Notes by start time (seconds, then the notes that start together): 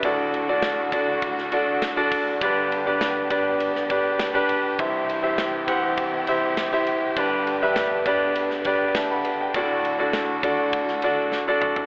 Already playing: D3
0.03 D2 A2 A3 D4 F#4 A4 D5, kick, ride
0.34 ride
0.48 D4 F#4 A4 D5
0.62 snare, ride
0.92 D4 F#4 A4 D5, kick, ride
1.22 kick, ride
1.38 snare
1.52 D4 F#4 A4 D5, ride
1.82 snare, ride
1.96 D4 F#4 A4 D5
2.12 kick, open hi-hat, ride
2.41 G2 D3 B3 D4 G4 B4 D5, kick, hi-hat pedal, ride
2.72 ride
2.86 D4 G4 B4 D5
3.01 snare, ride
3.30 D4 G4 B4 D5, kick, ride
3.60 ride
3.75 snare
3.90 D4 G4 B4 D5, kick, ride
4.19 snare, ride
4.34 D4 G4 B4 D5
4.49 ride
4.79 C2 G2 E3 C4 E4 G4 C5 E5, kick, ride
5.09 ride
5.23 E4 G4 C5 E5
5.38 snare, ride
5.67 E4 G4 C5 F#5, kick, ride
5.97 kick, ride
6.27 E4 G4 C5 E5, ride
6.57 snare, ride
6.72 E4 G4 C5 E5
6.87 ride
7.16 G2 D3 B3 D4 G4 B4 D5, kick, ride
7.47 ride
7.62 D4 G4 B4 E5
7.76 snare, ride
8.06 D4 G4 B4 D5, kick, ride
8.35 ride
8.50 snare
8.64 D4 G4 B4 D5, kick, ride
8.95 E5 A5, snare, ride
9.11 F#5 B5
9.25 ride
9.41 D5 G5
9.53 D2 A2 A3 D4 F#4 A4 D5, kick, ride
9.85 ride
9.99 D4 F#4 A4 D5
10.13 snare, ride
10.43 D4 F#4 A4 D5, kick, ride
10.73 kick, ride
10.88 snare
11.02 D4 F#4 A4 D5, ride
11.32 snare
11.48 D4 F#4 A4 D5
11.62 mid tom
11.76 floor tom